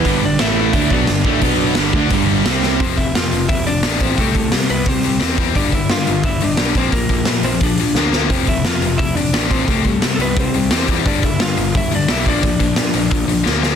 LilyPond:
<<
  \new Staff \with { instrumentName = "Lead electric guitar" } { \time 4/4 \key f \lydian \tempo 4 = 174 <b b'>8 <d' d''>8 <e' e''>4 <e' e''>8 <d' d''>4.~ | <d' d''>2. r4 | <c' c''>8 <e' e''>8 <f' f''>4 <e' e''>8 <d' d''>4 <c' c''>8 | <a a'>4 r8 <b b'>8 <c' c''>4. r8 |
<d' d''>8 <e' e''>8 <f' f''>4 <e' e''>8 <d' d''>4 <c' c''>8 | <bes bes'>4 r8 <c' c''>8 <d' d''>4. r8 | <c' c''>8 <e' e''>8 <f' f''>4 <e' e''>8 <d' d''>4 <c' c''>8 | <a a'>4 r16. a'32 <b b'>8 <c' c''>4. r8 |
<d' d''>8 <e' e''>8 <f' f''>4 <e' e''>8 <d' d''>8 <e' e''>8 <d' d''>8~ | <d' d''>2. r4 | }
  \new Staff \with { instrumentName = "Distorted electric guitar" } { \clef bass \time 4/4 \key f \lydian <g, d g>8 <g, d>8 <a, e a>4 <d a d'>8 <b, fis b>8 <g, d>8 <a, e a>8 | <b, fis b>4 <g, d g>8 <d a d'>8 <g, d g>4 <c g c'>4 | r1 | r1 |
r1 | r1 | r1 | r1 |
r1 | r1 | }
  \new Staff \with { instrumentName = "Overdriven electric guitar" } { \clef bass \time 4/4 \key f \lydian <g, d g>8 <g, d>8 <a, e a>4 <d a d'>8 <b, fis b>8 <g, d>8 <a, e a>8 | <b, fis b>4 <g, d g>8 <d a d'>8 <g, d g>4 <c g c'>4 | r1 | r1 |
r1 | r1 | r1 | r1 |
r1 | r1 | }
  \new Staff \with { instrumentName = "Distorted electric guitar" } { \clef bass \time 4/4 \key f \lydian <g, d g>8 <g, d>8 <a, e a>4 <d a d'>8 <b, fis b>8 <g, d>8 <a, e a>8 | <b, fis b>4 <g, d g>8 <d a d'>8 <g, d g>4 <c g c'>4 | <f, c f>8 <f, c>8 <f, c>8 <f, c>8 <f, c>8 <f, c>8 <f, c f>8 <f, c f>8 | <c g c'>8 <c g>8 <c g>8 <c g>8 <c g>8 <c g>8 <c g c'>8 <c g c'>8 |
<g, d g>8 <g, d>8 <g, d>8 <g, d>8 <g, d>8 <g, d>8 <g, d g>8 <bes, f bes>8 | <bes, f>8 <bes, f>8 <bes, f>8 <bes, f>8 <bes, f>8 <bes, f>8 <bes, f bes>8 <bes, f bes>8 | <f, c f>8 <f, c>8 <f, c>8 <f, c>8 <f, c>8 <f, c>8 <f, c f>8 <f, c f>8 | <c g c'>8 <c g>8 <c g>8 <c g>8 <c g>8 <c g>8 <c g c'>8 <c g c'>8 |
<g, d g>8 <g, d>8 <g, d>8 <g, d>8 <g, d>8 <g, d>8 <g, d g>8 <bes, f bes>8 | <bes, f>8 <bes, f>8 <bes, f>8 <bes, f>8 <bes, f>8 <bes, f>8 <bes, f bes>8 <bes, f bes>8 | }
  \new Staff \with { instrumentName = "Picked electric bass" } { \clef bass \time 4/4 \key f \lydian g,,8 g,,8 a,,4 d,8 b,,8 g,,8 a,,8 | b,,4 g,,8 d,8 g,,4 c,4 | f,,8 f,,8 f,8 f,,8 f,,4 a,,4 | c,8 c,8 c8 c,8 c,4 e,4 |
g,,8 g,,8 g,8 g,,8 g,,4 b,,8 bes,,8 | bes,,8 bes,,8 bes,8 bes,,8 bes,,4 d,4 | f,,8 f,,8 f,8 f,,8 f,,4 a,,4 | c,8 c,8 c8 c,8 c,4 e,4 |
g,,8 g,,8 g,8 g,,8 g,,4 b,,8 bes,,8 | bes,,8 bes,,8 bes,8 bes,,8 bes,,4 d,4 | }
  \new DrumStaff \with { instrumentName = "Drums" } \drummode { \time 4/4 <hho bd>4 <hho sn>4 <hho bd>8 bd8 <hho sn>8 bd8 | <hho bd>4 <hho sn>8 bd8 <hho bd>4 <hho sn>8 sn8 | <hho bd>8 <hho bd>8 <hho sn>8 hho8 <hho bd>8 hho8 <hho sn>8 <hho bd>8 | <hho bd>8 <hho bd>8 <hho sn>8 hho8 <hho bd>8 hho8 <hho sn>8 <hho bd>8 |
<hho bd>8 <hho bd>8 <hho sn>8 hho8 <hho bd>8 hho8 <hho sn>8 <hho bd>8 | <hho bd>8 <hho bd>8 <hho sn>8 hho8 <hho bd>8 hho8 sn8 sn8 | <hho bd>8 <hho bd>8 <hho sn>8 hho8 <hho bd>8 hho8 <hho sn>8 <hho bd>8 | <hho bd>8 <hho bd>8 <hho sn>8 hho8 <hho bd>8 hho8 <hho sn>8 <hho bd>8 |
<hho bd>8 <hho bd>8 <hho sn>8 hho8 <hho bd>8 hho8 <hho sn>8 <hho bd>8 | <hho bd>8 <hho bd>8 <hho sn>8 hho8 <hho bd>8 hho8 sn8 sn8 | }
>>